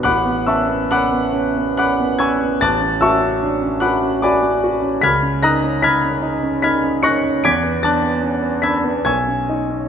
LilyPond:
\new Staff \with { instrumentName = "Grand piano" } { \time 3/4 \key a \major \tempo 4 = 74 << { <fis'' b'' d''' fis'''>8 <e'' a'' cis''' e'''>8 <fis'' b'' d''' fis'''>4 <fis'' b'' d''' fis'''>8 <gis'' cis''' e''' gis'''>8 | <a'' d''' fis''' a'''>8 <e'' a'' cis''' e'''>4 <fis'' b'' d''' fis'''>8 <d'' gis'' b'' d'''>4 | <b'' eis''' gis''' b'''>8 <bes'' dis''' fis''' bes'''>8 <b'' eis''' gis''' b'''>4 <b'' eis''' gis''' b'''>8 <cis''' fis''' bes''' cis''''>8 | <d''' gis''' b''' d''''>8 <a'' d''' fis''' a'''>4 <b'' e''' gis''' b'''>8 <gis'' cis''' e''' gis'''>4 | } \\ { a,,16 b16 cis'16 b16 cis'16 b16 cis'16 b16 cis'16 b16 cis'16 b16 | a,,16 cis'16 fis'16 cis'16 d'16 cis'16 fis'16 cis'16 fis'16 cis'16 fis'16 cis'16 | cis,16 cis'16 dis'16 cis'16 dis'16 cis'16 dis'16 cis'16 dis'16 cis'16 dis'16 cis'16 | e,16 b16 d'16 b16 cis'16 b16 d'16 b16 b,,16 cis'16 dis'16 cis'16 | } >> }